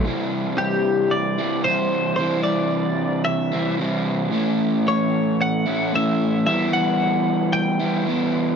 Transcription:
X:1
M:4/4
L:1/8
Q:1/4=112
K:Clyd
V:1 name="Clean electric guitar"
z2 G2 d2 c2 | c d3 e2 z2 | z2 ^c2 f2 e2 | e f3 g2 z2 |]
V:2 name="Overdriven electric guitar" clef=bass
[C,E,G,CE]4- [C,E,G,CE] [C,E,G,CE] [C,E,G,CE]2 | [C,E,G,CE]4- [C,E,G,CE] [C,E,G,CE] [C,E,G,CE]2 | [A,,E,A,^CE]4- [A,,E,A,CE] [A,,E,A,CE] [A,,E,A,CE]2 | [E,G,B,E]4- [E,G,B,E] [E,G,B,E] [E,G,B,E]2 |]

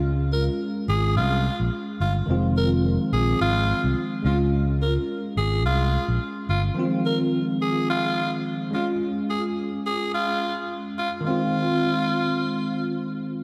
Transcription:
X:1
M:4/4
L:1/16
Q:"Swing 16ths" 1/4=107
K:Fm
V:1 name="Alto saxophone"
z2 B z3 A2 F3 z3 F z | z2 B z3 A2 F3 z3 F z | z2 B z3 A2 F3 z3 F z | z2 B z3 A2 F3 z3 F z |
z2 A z3 A2 F3 z3 F z | F12 z4 |]
V:2 name="Tine electric piano"
[A,DF]12- [A,DF]2 z2 | [E,F,A,CF]12- [E,F,A,CF]2 [A,DF]2- | [A,DF]12- [A,DF]2 z2 | [E,F,G,A,CF]12- [E,F,G,A,CF]2 [A,DF]2- |
[A,DF]12- [A,DF]2 z2 | [E,A,CF]16 |]
V:3 name="Fingered electric bass" clef=bass
D,,4- D,, z A,,,2 C,,3 B,,, z2 G,,,2 | F,,,4- F,,, z B,,,2 A,,,3 C,, z2 D,,2- | D,,4- D,, z A,,,2 C,,3 B,,, z2 G,,,2 | z16 |
z16 | z16 |]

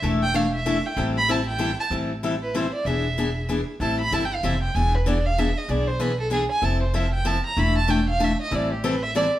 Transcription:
X:1
M:3/4
L:1/8
Q:"Swing" 1/4=191
K:Am
V:1 name="Violin"
z g f e2 g | z b a g2 a | z3 B c d | e4 z2 |
a b (3a g f e g | ^g B d f e ^d | d c B A ^G ^g | a c e g a _b |
b a g f e ^d | d G B e d z |]
V:2 name="Steel-string acoustic guitar"
[E,A,DEA] z [E,A,DEA] z [E,A,DEA] z | [E,G,CEA] z [E,G,CEA] z [E,G,CEA] z | [E,G,CEA] z [E,G,CEA] z [E,G,CEA] z | [E,B,D^G] z [E,B,DG] z [E,B,DG] z |
[E,G,CEA] z [E,G,CEA] z [E,G,CEA] z | [E,B,D^G] z [E,B,DG] z [E,B,DG] z | [E,B,D^G] z [E,B,DG] z [E,B,DG] z | [F,CEA] z [F,CEA] z [F,CEA] z |
[E,A,DEA] z [E,A,DEA] z [E,A,DEA] z | [E,G,CEA] z [E,G,CEA] z [E,G,CEA] z |]
V:3 name="Upright bass" clef=bass
E,,,6 | A,,,6 | A,,,6 | E,,,6 |
A,,,2 G,,,2 F,,,2 | E,,,6 | B,,,6 | F,,,6 |
E,,,6 | A,,,6 |]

